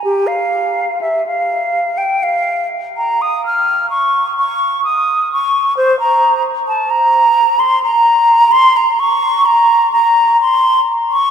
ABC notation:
X:1
M:3/4
L:1/16
Q:1/4=64
K:Bbdor
V:1 name="Flute"
G f3 =e f3 g f3 | b e' f'2 d'2 d'2 e'2 d'2 | c b2 z =a b3 c' b3 | c' b d'2 b2 b2 c'3 d' |]